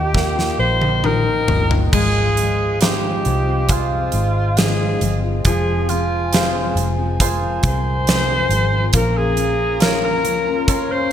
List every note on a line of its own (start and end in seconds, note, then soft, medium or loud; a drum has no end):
0.00 0.55 D#2 medium
0.00 1.89 D#3 medium
0.00 0.13 A#3 soft
0.00 0.36 A#3 soft
0.00 0.36 D#4 medium
0.00 1.00 D#4 soft
0.00 0.34 F4 medium
0.00 1.90 F4 medium
0.00 0.59 G4 medium
0.00 1.89 A#4 medium
0.00 1.90 D#5 medium
0.00 1.90 G5 medium
0.14 1.89 A#3 medium
0.14 kick medium
0.14 snare medium
0.35 0.58 A#3 soft
0.35 0.58 D#4 medium
0.35 0.58 F4 medium
0.35 snare soft
0.58 1.44 A#1 medium
0.58 1.02 G3 medium
0.58 1.03 A#3 medium
0.58 1.03 D#4 medium
0.58 1.03 F4 medium
0.58 1.07 C5 medium
0.81 high tom medium
1.03 1.26 D#3 medium
1.03 1.26 G3 medium
1.03 1.25 A#3 medium
1.03 1.90 D#4 medium
1.03 1.24 D#4 loud
1.03 1.23 F4 loud
1.03 1.76 A#4 loud
1.03 mid tom medium
1.25 1.47 A#3 soft
1.25 1.48 D#4 soft
1.48 1.90 G1 medium
1.48 1.70 G3 medium
1.48 1.70 A#3 medium
1.48 1.69 D#4 medium
1.48 1.68 F4 medium
1.48 floor tom medium
1.69 1.93 A#3 soft
1.69 1.93 D#4 soft
1.69 1.92 F4 medium
1.69 floor tom medium
1.92 3.21 G#1 medium
1.92 2.37 G#2 medium
1.92 2.37 D#3 medium
1.92 2.35 F3 medium
1.92 5.41 G#3 medium
1.92 2.36 G#3 medium
1.92 2.37 C4 medium
1.92 8.89 F4 medium
1.92 2.37 F4 medium
1.92 2.78 G#4 medium
1.92 7.16 C5 medium
1.92 5.41 D#5 medium
1.92 5.41 F5 medium
1.92 kick medium
1.92 crash medium
2.36 2.80 F3 medium
2.36 2.81 G#3 medium
2.36 2.81 C4 medium
2.36 2.81 F4 medium
2.36 closed hi-hat medium
2.81 3.25 G#2 medium
2.81 3.25 D#3 medium
2.81 3.24 F3 medium
2.81 3.25 G#3 medium
2.81 3.26 C4 medium
2.81 3.67 D#4 soft
2.81 3.67 F4 soft
2.81 3.26 F4 medium
2.81 3.73 G4 medium
2.81 3.67 C5 soft
2.81 snare loud
2.81 closed hi-hat medium
3.25 4.09 C2 medium
3.25 3.47 F3 medium
3.25 3.47 G#3 medium
3.25 3.47 C4 medium
3.25 3.46 F4 medium
3.25 closed hi-hat medium
3.47 3.92 F3 soft
3.47 3.91 G#3 soft
3.47 3.90 C4 medium
3.47 3.90 F4 medium
3.69 4.54 F4 soft
3.69 4.59 F4 medium
3.69 4.54 G#4 soft
3.69 4.55 C5 medium
3.69 kick medium
3.69 closed hi-hat loud
3.91 4.57 F3 soft
3.91 4.57 G#3 soft
3.91 4.57 C4 soft
3.91 4.57 F4 soft
4.12 4.97 G#1 medium
4.12 closed hi-hat medium
4.57 5.01 G#2 medium
4.57 5.01 D#3 medium
4.57 4.99 F3 medium
4.57 5.00 G#3 medium
4.57 5.01 C4 medium
4.57 5.01 F4 medium
4.57 5.18 G#4 medium
4.57 snare loud
4.57 closed hi-hat medium
5.00 5.42 G1 medium
5.00 5.22 F3 medium
5.00 5.23 G#3 medium
5.00 5.22 C4 medium
5.00 5.22 F4 medium
5.00 closed hi-hat medium
5.23 5.45 F3 soft
5.23 5.45 G#3 soft
5.23 5.45 C4 soft
5.23 5.45 F4 medium
5.45 6.72 F1 medium
5.45 5.89 F2 medium
5.45 5.89 C3 medium
5.45 5.87 F3 medium
5.45 8.90 F3 medium
5.45 5.88 G#3 medium
5.45 5.88 C4 medium
5.45 5.89 F4 medium
5.45 8.90 G#4 medium
5.45 5.90 G#4 medium
5.45 8.90 G#5 medium
5.45 kick medium
5.45 closed hi-hat medium
5.88 6.32 F3 medium
5.88 6.32 G#3 medium
5.88 6.32 C4 medium
5.88 6.76 F4 medium
5.88 6.33 F4 medium
5.88 closed hi-hat medium
6.32 6.76 F2 medium
6.32 6.76 C3 medium
6.32 6.75 F3 medium
6.32 6.75 G#3 medium
6.32 6.76 C4 medium
6.32 7.17 F4 soft
6.32 6.77 F4 medium
6.32 7.17 G#4 soft
6.32 7.18 C5 soft
6.32 snare loud
6.32 closed hi-hat medium
6.76 7.59 F1 medium
6.76 6.98 F3 medium
6.76 6.98 G#3 medium
6.76 6.97 C4 medium
6.76 6.96 F4 medium
6.76 closed hi-hat medium
6.97 7.42 F3 soft
6.97 7.42 G#3 medium
6.97 7.41 C4 medium
6.97 7.40 F4 medium
7.20 8.04 F4 soft
7.20 8.04 G#4 soft
7.20 8.92 A#4 medium
7.20 8.05 C5 medium
7.20 kick medium
7.20 closed hi-hat loud
7.42 8.06 F3 soft
7.42 8.06 G#3 soft
7.42 8.07 C4 medium
7.42 8.06 F4 medium
7.63 8.46 C2 medium
7.63 kick medium
7.63 closed hi-hat medium
7.68 8.91 C5 loud
8.07 8.50 F2 medium
8.07 8.50 C3 medium
8.07 8.49 F3 medium
8.07 8.50 G#3 medium
8.07 8.50 C4 medium
8.07 8.51 F4 medium
8.07 snare loud
8.07 closed hi-hat medium
8.49 8.90 G#1 medium
8.49 8.71 F3 medium
8.49 8.72 G#3 medium
8.49 8.71 C4 medium
8.49 8.70 F4 medium
8.49 closed hi-hat medium
8.72 8.92 F3 soft
8.72 8.93 G#3 soft
8.72 8.93 C4 soft
8.72 8.93 F4 medium
8.93 10.24 A#1 loud
8.93 9.36 A#2 medium
8.93 9.35 F3 medium
8.93 9.36 A#3 medium
8.93 11.12 A#3 medium
8.93 9.36 C#4 loud
8.93 11.12 C#4 medium
8.93 9.37 F4 medium
8.93 11.12 F4 medium
8.93 11.12 A#4 medium
8.93 9.19 A#4 medium
8.93 10.67 A#5 medium
8.93 kick loud
8.93 closed hi-hat loud
9.17 9.81 G#4 loud
9.36 9.79 F3 medium
9.36 9.80 A#3 medium
9.36 9.80 C#4 medium
9.36 9.80 F4 medium
9.36 closed hi-hat medium
9.80 10.24 A#2 medium
9.80 10.22 F3 medium
9.80 10.23 A#3 loud
9.80 10.24 C#4 medium
9.80 10.65 F4 soft
9.80 10.24 F4 medium
9.80 10.65 A#4 soft
9.80 10.01 A#4 medium
9.80 10.65 C#5 medium
9.80 snare loud
9.80 closed hi-hat medium
10.04 10.65 A#4 loud
10.24 11.08 C#2 medium
10.24 10.45 F3 medium
10.24 10.46 A#3 medium
10.24 10.45 C#4 medium
10.24 10.44 F4 medium
10.24 closed hi-hat medium
10.45 10.90 A#3 soft
10.45 10.89 C#4 medium
10.45 10.88 F4 medium
10.67 11.12 C#4 medium
10.67 11.12 F4 medium
10.67 11.12 A#4 soft
10.67 10.93 A#4 medium
10.67 11.12 C6 medium
10.67 kick medium
10.67 closed hi-hat loud
10.89 11.12 A#3 soft
10.89 11.12 C#4 medium
10.89 11.12 F4 soft
10.89 11.12 C5 loud